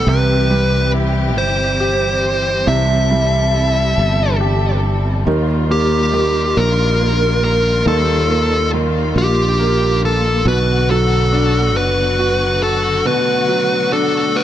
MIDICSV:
0, 0, Header, 1, 5, 480
1, 0, Start_track
1, 0, Tempo, 865801
1, 39, Time_signature, 6, 3, 24, 8
1, 8003, End_track
2, 0, Start_track
2, 0, Title_t, "Lead electric guitar"
2, 0, Program_c, 0, 29
2, 50, Note_on_c, 0, 71, 91
2, 503, Note_off_c, 0, 71, 0
2, 765, Note_on_c, 0, 72, 78
2, 1486, Note_on_c, 0, 76, 96
2, 1504, Note_off_c, 0, 72, 0
2, 2422, Note_off_c, 0, 76, 0
2, 3168, Note_on_c, 0, 67, 80
2, 3645, Note_on_c, 0, 70, 96
2, 3659, Note_off_c, 0, 67, 0
2, 4120, Note_off_c, 0, 70, 0
2, 4126, Note_on_c, 0, 70, 83
2, 4347, Note_off_c, 0, 70, 0
2, 4367, Note_on_c, 0, 69, 87
2, 4822, Note_off_c, 0, 69, 0
2, 5090, Note_on_c, 0, 67, 86
2, 5543, Note_off_c, 0, 67, 0
2, 5573, Note_on_c, 0, 69, 88
2, 5790, Note_off_c, 0, 69, 0
2, 5810, Note_on_c, 0, 71, 106
2, 6029, Note_off_c, 0, 71, 0
2, 6047, Note_on_c, 0, 69, 93
2, 6523, Note_off_c, 0, 69, 0
2, 6525, Note_on_c, 0, 71, 101
2, 7001, Note_off_c, 0, 71, 0
2, 7003, Note_on_c, 0, 69, 85
2, 7243, Note_off_c, 0, 69, 0
2, 7246, Note_on_c, 0, 71, 97
2, 7720, Note_off_c, 0, 71, 0
2, 7722, Note_on_c, 0, 69, 92
2, 7725, Note_off_c, 0, 69, 0
2, 7725, Note_on_c, 0, 69, 81
2, 7964, Note_on_c, 0, 71, 87
2, 8003, Note_off_c, 0, 69, 0
2, 8003, Note_off_c, 0, 71, 0
2, 8003, End_track
3, 0, Start_track
3, 0, Title_t, "String section"
3, 0, Program_c, 1, 48
3, 0, Note_on_c, 1, 52, 67
3, 0, Note_on_c, 1, 55, 58
3, 36, Note_on_c, 1, 60, 60
3, 36, Note_on_c, 1, 67, 76
3, 1464, Note_off_c, 1, 67, 0
3, 1478, Note_on_c, 1, 69, 75
3, 2898, Note_off_c, 1, 52, 0
3, 2898, Note_off_c, 1, 60, 0
3, 2905, Note_off_c, 1, 69, 0
3, 2920, Note_on_c, 1, 51, 68
3, 2922, Note_on_c, 1, 65, 75
3, 2923, Note_on_c, 1, 58, 59
3, 5778, Note_off_c, 1, 51, 0
3, 5779, Note_off_c, 1, 55, 0
3, 5779, Note_off_c, 1, 58, 0
3, 5779, Note_off_c, 1, 65, 0
3, 5796, Note_on_c, 1, 54, 62
3, 5797, Note_on_c, 1, 50, 73
3, 5797, Note_on_c, 1, 59, 64
3, 5797, Note_on_c, 1, 66, 84
3, 7223, Note_off_c, 1, 59, 0
3, 7238, Note_on_c, 1, 57, 66
3, 8003, Note_off_c, 1, 50, 0
3, 8003, Note_off_c, 1, 54, 0
3, 8003, Note_off_c, 1, 57, 0
3, 8003, Note_off_c, 1, 66, 0
3, 8003, End_track
4, 0, Start_track
4, 0, Title_t, "Grand piano"
4, 0, Program_c, 2, 0
4, 0, Control_c, 2, 64, 127
4, 41, Note_on_c, 2, 48, 58
4, 47, Control_c, 2, 64, 0
4, 152, Control_c, 2, 64, 127
4, 279, Note_on_c, 2, 55, 46
4, 520, Note_on_c, 2, 64, 48
4, 999, Note_on_c, 2, 67, 57
4, 1218, Note_off_c, 2, 55, 0
4, 1459, Note_off_c, 2, 48, 0
4, 1459, Note_off_c, 2, 64, 0
4, 1478, Note_on_c, 2, 48, 55
4, 1723, Note_on_c, 2, 55, 51
4, 1938, Note_off_c, 2, 67, 0
4, 1961, Note_on_c, 2, 64, 47
4, 2443, Note_on_c, 2, 67, 53
4, 2660, Note_off_c, 2, 55, 0
4, 2898, Note_off_c, 2, 48, 0
4, 2899, Note_off_c, 2, 64, 0
4, 2908, Note_off_c, 2, 67, 0
4, 2921, Note_on_c, 2, 51, 58
4, 2928, Control_c, 2, 64, 0
4, 3012, Control_c, 2, 64, 127
4, 3161, Note_on_c, 2, 58, 49
4, 3392, Note_off_c, 2, 51, 0
4, 3401, Note_on_c, 2, 51, 52
4, 3873, Note_off_c, 2, 58, 0
4, 3881, Note_on_c, 2, 58, 57
4, 4339, Note_off_c, 2, 51, 0
4, 4363, Note_on_c, 2, 51, 57
4, 4594, Note_off_c, 2, 58, 0
4, 4603, Note_on_c, 2, 58, 52
4, 4835, Note_off_c, 2, 51, 0
4, 4844, Note_on_c, 2, 51, 53
4, 5310, Note_off_c, 2, 58, 0
4, 5318, Note_on_c, 2, 58, 59
4, 5780, Note_off_c, 2, 51, 0
4, 5785, Note_off_c, 2, 58, 0
4, 5799, Note_on_c, 2, 47, 62
4, 5808, Control_c, 2, 64, 0
4, 5896, Control_c, 2, 64, 127
4, 6041, Note_on_c, 2, 54, 55
4, 6278, Note_on_c, 2, 62, 56
4, 6756, Note_on_c, 2, 66, 59
4, 6978, Note_off_c, 2, 54, 0
4, 7216, Note_off_c, 2, 62, 0
4, 7217, Note_off_c, 2, 47, 0
4, 7236, Note_on_c, 2, 47, 59
4, 7475, Note_on_c, 2, 54, 54
4, 7695, Note_off_c, 2, 66, 0
4, 7717, Note_on_c, 2, 62, 55
4, 8003, Note_off_c, 2, 47, 0
4, 8003, Note_off_c, 2, 54, 0
4, 8003, Note_off_c, 2, 62, 0
4, 8003, End_track
5, 0, Start_track
5, 0, Title_t, "Fretless electric bass"
5, 0, Program_c, 3, 35
5, 36, Note_on_c, 3, 36, 94
5, 760, Note_off_c, 3, 36, 0
5, 760, Note_on_c, 3, 31, 76
5, 1458, Note_off_c, 3, 31, 0
5, 1481, Note_on_c, 3, 36, 92
5, 2179, Note_off_c, 3, 36, 0
5, 2204, Note_on_c, 3, 31, 78
5, 2900, Note_off_c, 3, 31, 0
5, 2920, Note_on_c, 3, 39, 82
5, 3618, Note_off_c, 3, 39, 0
5, 3641, Note_on_c, 3, 34, 80
5, 4339, Note_off_c, 3, 34, 0
5, 4357, Note_on_c, 3, 39, 91
5, 5057, Note_off_c, 3, 39, 0
5, 5076, Note_on_c, 3, 34, 84
5, 5776, Note_off_c, 3, 34, 0
5, 5795, Note_on_c, 3, 35, 101
5, 6518, Note_off_c, 3, 35, 0
5, 6518, Note_on_c, 3, 30, 82
5, 7216, Note_off_c, 3, 30, 0
5, 8003, End_track
0, 0, End_of_file